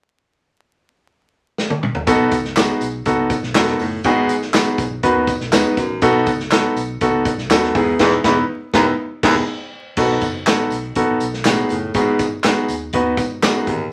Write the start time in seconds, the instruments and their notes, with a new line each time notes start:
1.58 snare
1.70 high tom
1.83 mid tom
1.95 floor tom
2.07 fingered electric bass B1, baritone saxophone B2, grand piano B3 D#4 F#4 A4, kick, closed hi-hat, tambourine
2.31 fingered electric bass C#2, kick, closed hi-hat, tambourine
2.45 snare
2.56 grand piano B3 D#4 F#4 G#4, snare, clap, closed hi-hat, tambourine
2.81 fingered electric bass B1, closed hi-hat, tambourine
3.05 fingered electric bass C#2, grand piano B3 D#4 F#4 A4, kick, closed hi-hat, tambourine
3.30 kick, closed hi-hat, tambourine
3.43 fingered electric bass B1, snare
3.54 fingered electric bass E1, baritone saxophone F#2, grand piano B3 D#4 F#4 A4, snare, clap, closed hi-hat, tambourine
3.67 snare
3.79 fingered electric bass F#1, baritone saxophone A2, open hi-hat, tambourine
4.04 fingered electric bass G#1, baritone saxophone G#2, grand piano B3 D#4 F#4 G#4, kick, closed hi-hat, tambourine
4.29 fingered electric bass G#1, closed hi-hat, tambourine
4.42 snare
4.53 grand piano B3 D#4 F#4 G#4, snare, clap, closed hi-hat, tambourine
4.78 fingered electric bass B1, kick, closed hi-hat, tambourine
5.03 fingered electric bass D#2, baritone saxophone F#2, grand piano B3 D#4 F#4 B4, kick, closed hi-hat
5.27 kick, closed hi-hat, tambourine
5.40 fingered electric bass B1, snare
5.52 fingered electric bass D#2, baritone saxophone G#2, grand piano B3 D#4 F#4 B4, snare, clap, closed hi-hat, tambourine
5.77 fingered electric bass G#1, baritone saxophone F#2, kick, closed hi-hat, tambourine
5.89 fingered electric bass A1
6.01 fingered electric bass B1, baritone saxophone B2, grand piano B3 D#4 F#4 A4, kick, closed hi-hat, tambourine
6.26 fingered electric bass C#2, kick, closed hi-hat, tambourine
6.40 snare
6.51 grand piano B3 D#4 F#4 A4, snare, clap, closed hi-hat, tambourine
6.76 fingered electric bass B1, closed hi-hat, tambourine
7.01 fingered electric bass C#2, grand piano B3 D#4 F#4 A4, kick, closed hi-hat, tambourine
7.25 kick, closed hi-hat, tambourine
7.38 fingered electric bass B1, snare
7.49 fingered electric bass D#2, baritone saxophone F#2, grand piano B3 D#4 F#4 A4, snare, clap, closed hi-hat, tambourine
7.63 snare
7.75 fingered electric bass E2, baritone saxophone G#2, grand piano B3 D#4 E4 G#4, kick, open hi-hat, tambourine
7.99 fingered electric bass E1, baritone saxophone E2, grand piano B3 D#4 E4 G#4, kick, snare, crash
8.24 fingered electric bass E1, baritone saxophone E2, grand piano B3 D#4 E4 B4, kick, snare
8.74 fingered electric bass E1, baritone saxophone D#2, grand piano B3 D#4 E4 B4, kick, snare
9.23 fingered electric bass E1, baritone saxophone D#2, grand piano B3 D#4 E4 G#4, kick, snare, crash
9.97 fingered electric bass B1, baritone saxophone B2, grand piano B3 D#4 F#4 A4, kick, crash, tambourine
10.21 fingered electric bass F#1, kick, closed hi-hat, tambourine
10.47 fingered electric bass A1, grand piano B3 D#4 F#4 A4, snare, clap, closed hi-hat, tambourine
10.70 fingered electric bass B1, closed hi-hat, tambourine
10.95 fingered electric bass A1, grand piano B3 D#4 F#4 A4, kick, closed hi-hat
11.20 fingered electric bass B1, closed hi-hat, tambourine
11.34 snare
11.45 baritone saxophone A2, grand piano B3 D#4 F#4 G#4, snare, clap, closed hi-hat, tambourine
11.69 fingered electric bass F#1, baritone saxophone A2, closed hi-hat, tambourine
11.94 fingered electric bass G#1, baritone saxophone G#2, grand piano B3 D#4 F#4 G#4, kick, closed hi-hat, tambourine
12.19 kick, closed hi-hat, tambourine
12.44 fingered electric bass G#2, grand piano B3 D#4 F#4 G#4, snare, clap, closed hi-hat, tambourine
12.68 fingered electric bass D#2, closed hi-hat, tambourine
12.93 fingered electric bass D#2, grand piano B3 D#4 F#4 B4, kick, closed hi-hat
13.17 fingered electric bass G#2, kick, closed hi-hat, tambourine
13.42 baritone saxophone F#2, grand piano B3 D#4 F#4 G#4, snare, clap, closed hi-hat, tambourine
13.67 fingered electric bass A1, baritone saxophone D#2, kick, closed hi-hat